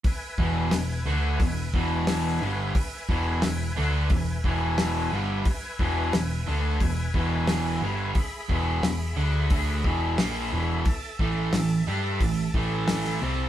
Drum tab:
HH |o---o---o---o---|o---o---o---o---|o---o---o---o---|o---o---o---o---|
SD |----o-------o---|----o-------o---|----o-------o---|----o-------o---|
BD |o-o-----o-o-----|o-o-----o-o-----|o-o-----o-o-----|o-o-----o-o-----|

HH |o---o---o---o---|
SD |----o-------oo--|
BD |o-o-----o-o-----|